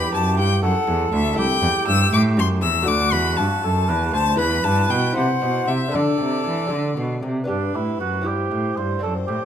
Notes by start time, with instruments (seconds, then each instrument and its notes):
Already playing: lute E2 E4 B4, cello E2, oboe G4, violin B5
0.13 cello F#2, lute F#2, violin A5
0.38 lute G2, cello G2, violin G5
0.63 lute F#2, cello F#2, oboe A4, violin F#5
0.87 lute E2, cello E2
1.13 lute D2, cello D2, violin E5
1.33 lute A3 E4 A4
1.38 cello C2, oboe G4, violin G5
1.62 cello E2, lute E2
1.86 lute G2, cello G2, violin E6
2.13 lute A2, cello A2, violin D6
2.37 lute F#2, cello F#2, violin C6
2.61 lute E2, cello E2, violin E6
2.82 lute D2 A3 F#4 D5
2.88 cello D2, oboe F#4, violin D6
3.12 lute E2, cello E2, violin B5
3.36 lute G2, cello G2, violin A5
3.63 lute F#2, cello F#2, oboe A4
3.89 lute E2, cello E2, oboe B4
4.13 lute D2, cello D2, oboe C5, violin A5
4.36 lute E2 E4 B4, cello E2, oboe B4, violin B5
4.64 lute G2, cello G2, violin A5
4.90 lute B2, cello B2, violin G5
5.12 lute C3 E4 C5
5.16 cello C3, oboe C5, violin F#5
5.42 lute B2, cello B2
5.66 lute C3, cello C3, violin E5
5.88 lute D3 D4 A4
5.93 cello D3, oboe A4, violin D5
6.18 lute C3, cello C3
6.44 lute E3, cello E3
6.67 lute D3 D4 A4
6.72 cello D3
6.97 lute B2, cello B2
7.23 lute C3, cello C3
7.44 lute B3 D4 G4
7.48 lute G2, cello G2, oboe D4, violin B4
7.74 lute A2, cello A2, oboe E4
8.00 lute F#2, cello F#2, oboe F#4
8.21 lute C4 E4 G4
8.26 lute G2, cello G2, oboe G4, violin C5
8.51 lute A2, cello A2
8.77 lute G2, cello G2, oboe C5
8.99 lute C4 D4, oboe A4
9.03 lute F#2, cello F#2
9.27 lute A2, cello A2, oboe G4